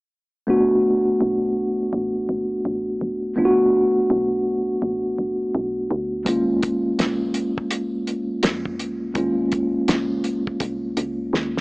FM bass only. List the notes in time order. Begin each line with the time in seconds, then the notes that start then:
0.48 E1
1.21 B1
1.93 A1
2.29 G1
2.65 A1
3.01 D#1
3.38 E1
4.10 B1
4.82 A1
5.18 F#1
5.55 B1
5.91 D2
6.26 D#2
6.99 A#1
7.71 C#2
8.07 D#2
8.43 F2
8.79 D2
9.16 D#2
9.88 C#2
10.61 C2
10.97 C#2
11.33 D#2